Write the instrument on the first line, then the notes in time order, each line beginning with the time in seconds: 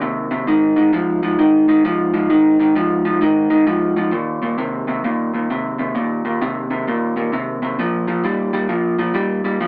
clean electric guitar
0.01 D#2 C3
0.31 D#2 C3
0.47 G#2 D#3
0.76 G#2 D#3
0.93 G#2 F3
1.23 G#2 F3
1.39 G#2 D#3
1.68 G#2 D#3
1.84 G#2 F3
2.14 G#2 F3
2.30 G#2 D#3
2.60 G#2 D#3
2.75 G#2 F3
3.05 G#2 F3
3.21 G#2 D#3
3.50 G#2 D#3
3.67 G#2 F3
3.96 G#2 F3
4.12 D#2 A#2
4.42 D#2 A#2
4.58 D#2 C3
4.87 D#2 C3
5.04 D#2 A#2
5.34 D#2 A#2
5.50 D#2 C3
5.79 D#2 C3
5.95 D#2 A#2
6.25 D#2 A#2
6.41 D#2 C3
6.70 D#2 C3
6.87 D#2 A#2
7.16 D#2 A#2
7.32 D#2 C3
7.62 D#2 C3
7.79 A#2 F3
8.08 A#2 F3
8.24 A#2 G3
8.53 A#2 G3
8.69 A#2 F3
8.99 A#2 F3
9.14 A#2 G3
9.44 A#2 G3
9.61 A#2 F3